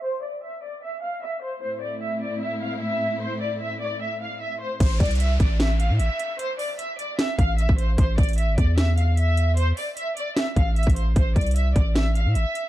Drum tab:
CC |------------------------------------------------------------------------------------------------|------------------------------------------------------------------------------------------------|------------------------------------------------------------------------------------------------|x-----------------------------------------------------------------------------------------------|
HH |------------------------------------------------------------------------------------------------|------------------------------------------------------------------------------------------------|------------------------------------------------------------------------------------------------|x-----------x--x--x--x--x-----------x-----------x-----------x-----------x-----------x-----------|
SD |------------------------------------------------------------------------------------------------|------------------------------------------------------------------------------------------------|------------------------------------------------------------------------------------------------|------------------------------------------------o-----------------------------------------------|
BD |------------------------------------------------------------------------------------------------|------------------------------------------------------------------------------------------------|------------------------------------------------------------------------------------------------|o-----------o-----------------------o-----------------------------------------------------------|

CC |------------------------------------------------------------------------------------------------|------------------------------------------------------------------------------------------------|------------------------------------------------------------------------------------------------|------------------------------------------------------------------------------------------------|
HH |x-----------o-----------x-----------x-----------x-----------x-----------x-----------x-----------|x-----------x--x--x--x--x-----------x-----------x-----------x-----------x-----------x-----------|x-----------o-----------x-----------x-----------x-----------x-----------x---x---x---x-----------|x-----------x--x--x--x--x-----------x-----------x-----------x-----------x-----------x-----------|
SD |------------------------------------------------o-----------------------------------------------|------------------------------------------------o-----------------------------------------------|------------------------------------------------o-----------------------------------------------|------------------------------------------------o-----------------------------------------------|
BD |------------------------------------------------------------o-----------------o-----------------|o-----------o-----------------------o-----------------------------------------------------------|------------------------------------------------------------o-----------------o-----------------|o-----------o-----------------------o-----------------------------------------------------------|